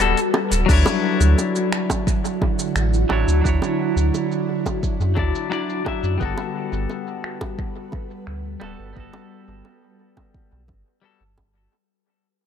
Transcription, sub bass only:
0.00 0.14 D1 medium
0.51 0.66 D1 medium
0.69 0.83 D2 medium
1.20 1.35 D2 medium
2.75 3.05 A1 medium
3.10 3.25 A1 medium
3.28 3.42 D2 medium
3.45 3.59 D2 medium
3.96 4.11 D2 medium
5.00 5.19 F#2 medium
5.17 5.32 D2 medium
6.03 6.18 F#2 medium
6.21 6.35 G1 medium
6.72 6.87 G1 medium
8.27 8.56 D2 medium
8.62 8.76 D1 medium
8.79 8.94 G1 medium
8.96 9.11 G1 medium
9.48 9.62 G1 medium
10.52 10.70 B1 medium
10.69 10.83 G1 medium
11.20 11.68 G1 medium

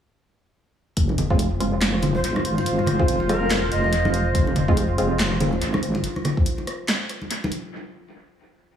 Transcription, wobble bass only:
0.97 1.59 F1 loud
1.60 2.22 F1 loud
2.24 3.07 G#1 medium
3.08 3.70 F1 loud
3.71 4.34 F1 medium
4.35 4.97 F1 loud
4.98 5.60 F1 loud
5.62 6.03 G#1 loud

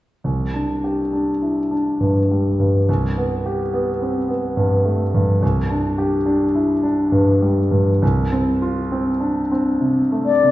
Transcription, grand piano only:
0.24 2.84 C2 soft
0.54 1.01 D4 soft
0.84 1.31 G4 soft
1.13 1.60 D4 soft
1.42 1.71 E4 soft
1.71 2.18 D4 soft
2.00 2.47 G2 soft
2.31 2.77 G3 soft
2.60 2.88 G2 soft
2.89 5.38 C2 soft
3.18 3.62 B3 soft
3.46 3.90 G4 soft
3.74 4.18 B3 soft
4.02 4.29 C4 soft
4.28 4.74 B3 soft
4.57 5.02 G2 soft
4.85 5.31 A3 soft
5.14 5.42 G2 soft
5.42 7.98 C2 soft
5.70 6.16 D4 soft
5.98 6.44 G4 soft
6.26 6.73 D4 soft
6.55 6.84 E4 soft
6.83 7.30 D4 soft
7.12 7.60 G2 soft
7.42 7.90 G3 soft
7.71 8.01 G2 soft
8.02 10.51 C2 soft
8.32 8.79 C4 soft
8.62 9.09 F4 soft
8.92 9.39 C4 soft
9.20 9.51 D4 soft
9.52 10.00 C4 soft
9.81 10.31 C3 soft
10.12 10.51 A3 soft
10.44 10.51 C3 soft

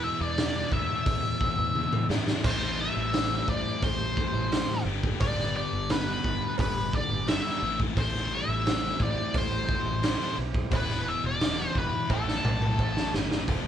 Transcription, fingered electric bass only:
0.00 0.12 E2 loud
0.20 0.64 E2 medium
0.72 0.86 E2 medium
1.06 1.50 E2 medium
1.59 1.88 E2 medium
2.10 2.39 G#2 medium
2.44 2.88 A1 medium
2.97 3.40 A1 medium
3.48 3.63 A1 medium
3.83 4.26 A1 medium
4.34 4.63 A1 medium
4.85 5.15 G1 medium
5.21 5.65 G1 loud
5.73 6.16 G1 medium
6.25 6.39 G1 medium
6.59 7.02 G1 medium
7.11 7.40 G1 medium
7.62 7.91 A1 medium
7.97 8.40 A1 loud
8.48 8.92 A1 medium
9.00 9.14 A1 medium
9.35 9.78 A1 medium
9.86 10.15 A1 medium
10.38 10.67 B1 medium
10.72 11.16 E1 loud
11.24 11.68 E1 medium
11.76 11.90 E1 medium
12.10 12.39 A1 medium
12.45 12.76 B1 medium
12.79 13.10 A1 medium
13.14 13.45 G1 medium
13.48 13.67 F1 medium

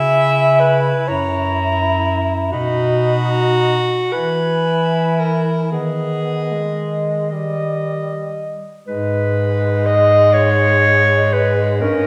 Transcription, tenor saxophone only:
0.00 1.06 E4 medium
1.08 2.49 E4 medium
2.53 3.79 D#4 medium
4.12 5.67 E4 medium
5.72 6.53 B3 medium
6.52 7.33 G#3 soft
7.31 8.55 G3 medium
8.87 11.83 G#3 medium
11.82 12.07 C#4 medium

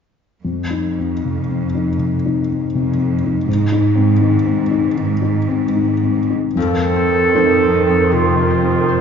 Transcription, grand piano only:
0.45 1.95 F2 soft
0.71 1.12 D#4 soft
0.99 1.39 C4 soft
1.25 1.65 C3 soft
1.48 1.89 C4 soft
1.75 2.15 D#4 soft
1.98 2.39 C3 soft
2.26 2.65 D#4 soft
2.50 2.89 C4 soft
2.75 3.14 C3 soft
2.97 3.37 C4 soft
3.24 3.48 D#4 soft
3.47 4.92 G#2 soft
3.72 4.12 D#4 soft
3.96 4.36 C4 soft
4.21 4.61 D#3 soft
4.46 4.86 C4 soft
4.71 5.12 D#4 soft
4.97 5.38 D#3 soft
5.22 5.64 D#4 soft
5.49 5.92 C4 soft
5.76 6.19 D#3 soft
6.03 6.46 C4 soft
6.30 6.57 D#4 soft
6.56 7.32 F2 soft
7.35 9.01 C4 soft
7.35 9.01 D#4 soft
7.35 9.01 C5 soft

